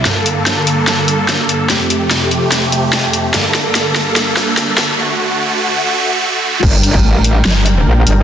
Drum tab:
CC |----------------|----------------|----------------|----------------|
HH |x-x-x-x-x-x-x-x-|x-x-x-x-x-x-x-x-|x-x-x-x-x-x-x-x-|----------------|
SD |o---o---o---o---|o---o---o---o---|o-o-o-o-o-o-o-o-|----------------|
BD |----------------|----------------|----------------|----------------|

CC |x---------------|
HH |--x---x---x---x-|
SD |--------o-------|
BD |o--o------------|